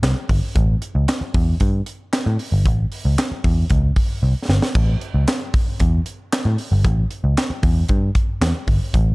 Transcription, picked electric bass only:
0, 0, Header, 1, 3, 480
1, 0, Start_track
1, 0, Tempo, 524017
1, 512, Time_signature, 4, 2, 24, 8
1, 8380, End_track
2, 0, Start_track
2, 0, Title_t, "Picked electric bass"
2, 0, Program_c, 0, 34
2, 26, Note_on_c, 0, 36, 98
2, 116, Note_off_c, 0, 36, 0
2, 269, Note_on_c, 0, 31, 91
2, 358, Note_off_c, 0, 31, 0
2, 508, Note_on_c, 0, 33, 107
2, 686, Note_off_c, 0, 33, 0
2, 871, Note_on_c, 0, 37, 89
2, 959, Note_off_c, 0, 37, 0
2, 1232, Note_on_c, 0, 40, 86
2, 1408, Note_off_c, 0, 40, 0
2, 1473, Note_on_c, 0, 43, 90
2, 1650, Note_off_c, 0, 43, 0
2, 2074, Note_on_c, 0, 45, 102
2, 2162, Note_off_c, 0, 45, 0
2, 2310, Note_on_c, 0, 31, 96
2, 2434, Note_off_c, 0, 31, 0
2, 2434, Note_on_c, 0, 33, 103
2, 2611, Note_off_c, 0, 33, 0
2, 2796, Note_on_c, 0, 37, 79
2, 2884, Note_off_c, 0, 37, 0
2, 3154, Note_on_c, 0, 40, 86
2, 3331, Note_off_c, 0, 40, 0
2, 3394, Note_on_c, 0, 37, 96
2, 3571, Note_off_c, 0, 37, 0
2, 3873, Note_on_c, 0, 36, 96
2, 3962, Note_off_c, 0, 36, 0
2, 4112, Note_on_c, 0, 31, 90
2, 4202, Note_off_c, 0, 31, 0
2, 4352, Note_on_c, 0, 33, 110
2, 4530, Note_off_c, 0, 33, 0
2, 4712, Note_on_c, 0, 37, 88
2, 4801, Note_off_c, 0, 37, 0
2, 5314, Note_on_c, 0, 40, 88
2, 5491, Note_off_c, 0, 40, 0
2, 5912, Note_on_c, 0, 45, 93
2, 6001, Note_off_c, 0, 45, 0
2, 6153, Note_on_c, 0, 31, 97
2, 6269, Note_off_c, 0, 31, 0
2, 6269, Note_on_c, 0, 33, 96
2, 6447, Note_off_c, 0, 33, 0
2, 6631, Note_on_c, 0, 37, 89
2, 6720, Note_off_c, 0, 37, 0
2, 6988, Note_on_c, 0, 40, 78
2, 7166, Note_off_c, 0, 40, 0
2, 7229, Note_on_c, 0, 43, 88
2, 7407, Note_off_c, 0, 43, 0
2, 7708, Note_on_c, 0, 40, 95
2, 7798, Note_off_c, 0, 40, 0
2, 7947, Note_on_c, 0, 31, 93
2, 8037, Note_off_c, 0, 31, 0
2, 8188, Note_on_c, 0, 33, 121
2, 8366, Note_off_c, 0, 33, 0
2, 8380, End_track
3, 0, Start_track
3, 0, Title_t, "Muted picked electric bass strokes"
3, 1110, Note_on_c, 9, 29, 50
3, 1202, Note_off_c, 9, 29, 0
3, 3037, Note_on_c, 9, 29, 49
3, 3128, Note_off_c, 9, 29, 0
3, 6870, Note_on_c, 9, 29, 49
3, 6962, Note_off_c, 9, 29, 0
3, 8380, End_track
0, 0, End_of_file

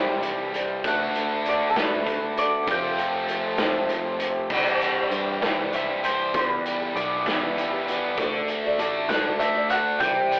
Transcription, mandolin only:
0, 0, Header, 1, 2, 480
1, 0, Start_track
1, 0, Tempo, 611621
1, 662, Time_signature, 6, 3, 24, 8
1, 8159, End_track
2, 0, Start_track
2, 0, Title_t, "Mandolin"
2, 0, Program_c, 0, 25
2, 0, Note_on_c, 0, 72, 78
2, 382, Note_off_c, 0, 72, 0
2, 672, Note_on_c, 0, 78, 90
2, 1161, Note_off_c, 0, 78, 0
2, 1166, Note_on_c, 0, 74, 89
2, 1329, Note_off_c, 0, 74, 0
2, 1333, Note_on_c, 0, 69, 66
2, 1385, Note_off_c, 0, 69, 0
2, 1407, Note_on_c, 0, 71, 77
2, 1843, Note_off_c, 0, 71, 0
2, 1870, Note_on_c, 0, 74, 86
2, 2113, Note_off_c, 0, 74, 0
2, 2126, Note_on_c, 0, 79, 86
2, 3043, Note_off_c, 0, 79, 0
2, 4275, Note_on_c, 0, 78, 92
2, 4492, Note_off_c, 0, 78, 0
2, 4509, Note_on_c, 0, 76, 88
2, 4745, Note_on_c, 0, 72, 85
2, 4753, Note_off_c, 0, 76, 0
2, 4984, Note_off_c, 0, 72, 0
2, 4987, Note_on_c, 0, 72, 80
2, 5073, Note_off_c, 0, 72, 0
2, 5073, Note_on_c, 0, 71, 80
2, 5454, Note_off_c, 0, 71, 0
2, 5457, Note_on_c, 0, 74, 82
2, 5697, Note_off_c, 0, 74, 0
2, 5700, Note_on_c, 0, 76, 71
2, 6209, Note_off_c, 0, 76, 0
2, 7131, Note_on_c, 0, 78, 88
2, 7369, Note_off_c, 0, 78, 0
2, 7372, Note_on_c, 0, 76, 85
2, 7611, Note_off_c, 0, 76, 0
2, 7614, Note_on_c, 0, 78, 91
2, 7844, Note_off_c, 0, 78, 0
2, 7847, Note_on_c, 0, 79, 92
2, 8159, Note_off_c, 0, 79, 0
2, 8159, End_track
0, 0, End_of_file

